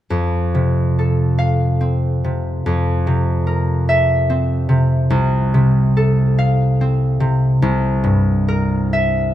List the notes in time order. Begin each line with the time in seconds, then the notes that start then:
0.10 F2
0.55 C3
0.99 A4
1.39 F5
1.81 C4
2.24 C3
2.66 F2
3.07 C3
3.47 A#4
3.89 E5
4.30 C4
4.69 C3
5.10 C2
5.54 C3
5.97 A4
6.39 F5
6.81 C4
7.20 C3
7.62 C2
8.04 G2
8.48 A#4
8.93 E5